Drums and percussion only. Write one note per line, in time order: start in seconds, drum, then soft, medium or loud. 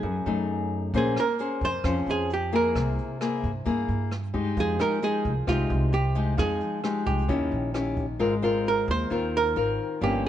0.94 kick medium
0.94 closed hi-hat soft
1.16 cross-stick soft
1.39 closed hi-hat soft
1.61 kick soft
1.61 closed hi-hat soft
1.84 kick medium
1.84 cross-stick medium
1.84 closed hi-hat soft
2.07 closed hi-hat soft
2.30 closed hi-hat soft
2.53 closed hi-hat soft
2.75 kick medium
2.75 cross-stick medium
2.75 closed hi-hat soft
2.98 closed hi-hat soft
3.21 cross-stick medium
3.21 closed hi-hat soft
3.43 kick soft
3.43 closed hi-hat soft
3.66 kick soft
3.66 closed hi-hat soft
3.89 closed hi-hat soft
4.12 cross-stick soft
4.12 closed hi-hat soft
4.34 kick medium
4.34 closed hi-hat soft
4.57 kick medium
4.57 closed hi-hat soft
4.80 cross-stick soft
4.80 closed hi-hat soft
5.02 closed hi-hat soft
5.25 kick soft
5.25 closed hi-hat soft
5.48 kick medium
5.48 cross-stick medium
5.48 closed hi-hat soft
5.70 closed hi-hat soft
5.93 closed hi-hat soft
6.16 closed hi-hat soft
6.38 kick medium
6.38 cross-stick medium
6.38 closed hi-hat soft
6.61 closed hi-hat soft
6.84 cross-stick medium
6.84 closed hi-hat soft
7.07 kick soft
7.07 closed hi-hat soft
7.29 kick medium
7.29 closed hi-hat soft
7.52 closed hi-hat soft
7.75 cross-stick medium
7.75 closed hi-hat soft
7.97 kick medium
7.97 closed hi-hat soft